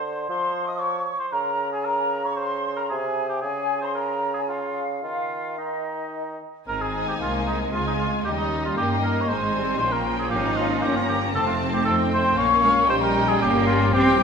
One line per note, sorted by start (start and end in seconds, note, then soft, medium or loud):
0.00 0.28 D3 soft
0.00 0.29 C5 medium
0.28 1.15 F3 medium
0.28 0.67 C5 medium
0.28 0.66 C6 medium
0.67 0.81 D#5 medium
0.67 0.80 D#6 medium
0.78 1.21 C#5 medium
0.78 1.18 C#6 medium
1.19 1.34 C5 medium
1.19 1.25 C6 medium
1.31 2.87 C#3 medium
1.31 1.72 A#4 medium
1.31 1.71 A#5 medium
1.72 1.86 G#4 medium
1.72 1.85 G#5 medium
1.85 2.24 A#4 medium
1.85 2.24 A#5 medium
2.24 2.38 C#5 medium
2.24 2.38 C#6 medium
2.36 2.75 C5 medium
2.36 2.77 C6 medium
2.76 2.82 A#4 medium
2.76 2.91 A#5 medium
2.89 3.42 C3 medium
2.89 3.28 G#4 medium
2.89 3.30 G#5 medium
3.29 3.41 G4 medium
3.29 3.43 G5 medium
3.41 5.00 C#3 medium
3.41 3.81 G#4 medium
3.41 3.82 G#5 medium
3.81 3.94 C5 medium
3.81 3.96 C6 medium
3.95 4.33 A#4 medium
3.95 4.36 A#5 medium
4.34 4.40 G#4 soft
4.34 4.50 G#5 medium
4.48 4.83 F4 medium
4.48 5.03 F5 medium
5.02 6.38 D#3 soft
5.02 5.54 F4 medium
5.02 5.58 F5 medium
5.58 6.39 D#4 soft
5.58 6.41 D#5 soft
6.67 7.17 G#1 medium
6.67 8.21 G#3 medium
6.67 8.21 C4 medium
6.67 7.17 C4 soft
6.67 7.69 D#4 soft
6.67 6.83 A#4 medium
6.67 7.69 G#5 soft
6.67 6.80 A#5 medium
6.81 7.08 G#4 medium
6.81 7.08 G#5 medium
7.07 7.14 G4 medium
7.07 7.20 G5 soft
7.19 7.72 C2 medium
7.19 8.21 G#3 medium
7.19 7.73 A#3 soft
7.19 7.33 F4 medium
7.19 7.46 F5 medium
7.47 7.59 D#4 medium
7.47 7.73 D#5 medium
7.72 8.24 C#2 medium
7.72 8.25 G#3 soft
7.72 7.86 F4 medium
7.72 8.26 F4 soft
7.72 7.79 F5 soft
7.72 8.24 G#5 soft
7.86 7.93 D#4 medium
7.86 7.99 D#5 medium
7.99 8.11 F4 medium
7.99 8.06 F5 medium
8.25 8.76 D#2 medium
8.25 8.77 G3 soft
8.25 9.25 G3 medium
8.25 8.78 G3 soft
8.25 9.25 C#4 medium
8.25 8.77 D#4 medium
8.25 8.31 G4 medium
8.25 8.77 D#5 soft
8.25 8.39 G5 medium
8.38 8.63 D#4 medium
8.38 8.46 D#5 soft
8.65 8.77 F4 medium
8.65 8.78 F5 soft
8.77 9.28 G2 medium
8.77 9.29 A#3 medium
8.77 9.29 A#3 soft
8.77 9.28 D#4 soft
8.77 8.89 G4 medium
8.77 9.28 D#5 soft
8.77 9.03 G5 medium
9.03 9.23 A#4 medium
9.03 9.29 A#5 medium
9.21 9.29 C#5 medium
9.28 9.79 G#1 medium
9.28 9.54 G#3 medium
9.28 9.76 G#3 medium
9.28 9.55 G#3 medium
9.28 9.76 C4 medium
9.28 9.80 D#4 soft
9.28 9.78 C5 medium
9.28 9.80 G#5 soft
9.28 9.79 C6 medium
9.54 9.80 G3 medium
9.54 9.80 C4 medium
9.79 10.31 A#1 medium
9.79 11.35 F3 medium
9.79 10.30 A#3 medium
9.79 11.31 A#3 medium
9.79 10.83 C#4 soft
9.79 11.31 C#4 medium
9.79 9.94 C5 medium
9.79 10.32 G5 soft
9.79 9.86 C6 medium
9.92 10.18 A#4 medium
9.92 10.00 A#5 medium
10.19 10.30 G#4 medium
10.19 10.26 G#5 medium
10.31 10.83 G#1 medium
10.31 10.83 D#4 medium
10.31 10.59 G4 medium
10.31 10.82 F5 soft
10.31 10.39 G5 medium
10.57 10.84 F4 medium
10.57 10.84 F5 medium
10.82 11.34 G1 medium
10.82 11.35 A#3 medium
10.82 11.34 C#4 medium
10.82 10.96 G4 medium
10.82 10.96 G5 medium
10.82 11.34 A#5 soft
10.96 11.02 F4 medium
10.96 11.10 F5 medium
11.09 11.20 G4 medium
11.09 11.34 G5 medium
11.33 11.86 F1 medium
11.33 11.85 A3 medium
11.33 12.33 A3 medium
11.33 12.34 C4 medium
11.33 11.85 C4 medium
11.33 12.33 D#4 medium
11.33 11.40 A4 medium
11.33 11.85 A5 medium
11.33 11.46 A5 medium
11.47 11.58 F4 medium
11.47 11.54 F5 medium
11.73 11.84 G4 medium
11.73 11.79 G5 medium
11.85 12.36 F2 medium
11.85 12.36 A3 soft
11.85 12.36 C4 medium
11.85 11.97 A4 medium
11.85 12.37 G5 medium
11.85 11.91 A5 medium
12.11 12.37 C5 medium
12.11 12.36 C6 medium
12.36 12.87 A#1 medium
12.36 12.85 F3 medium
12.36 12.44 A#3 medium
12.36 12.89 A#3 medium
12.36 12.88 C#4 medium
12.36 12.85 C#4 medium
12.36 12.88 C#5 loud
12.36 12.60 F5 medium
12.36 12.87 C#6 medium
12.62 12.70 G#3 medium
12.62 12.87 F5 medium
12.87 13.39 A#1 medium
12.87 13.39 G3 medium
12.87 13.90 G3 medium
12.87 13.37 G3 medium
12.87 13.37 C#4 medium
12.87 13.40 D#4 medium
12.87 12.95 C5 loud
12.87 13.90 G5 medium
12.87 13.01 C6 medium
13.01 13.30 A#4 medium
13.01 13.27 A#5 medium
13.26 13.41 G#4 medium
13.26 13.39 G#5 medium
13.38 13.91 G1 medium
13.38 13.92 G3 medium
13.38 13.91 A#3 medium
13.38 13.92 C#4 medium
13.38 13.66 G4 medium
13.38 13.64 G5 medium
13.63 13.92 F4 medium
13.63 13.69 F5 medium
13.91 14.23 A#1 medium
13.91 14.23 E3 medium
13.91 14.17 G3 medium
13.91 14.23 C4 medium
13.91 14.17 C4 medium
13.91 14.23 C4 medium
13.91 14.23 G4 loud
13.91 14.23 G5 medium
14.17 14.23 E3 medium
14.17 14.23 G3 medium